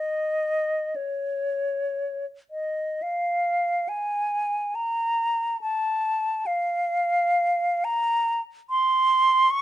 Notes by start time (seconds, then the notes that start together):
Already playing: D#5
0.96 C#5
2.51 D#5
3.02 F5
3.89 G#5
4.75 A#5
5.61 A5
6.46 F5
7.84 A#5
8.70 C6
9.51 C#6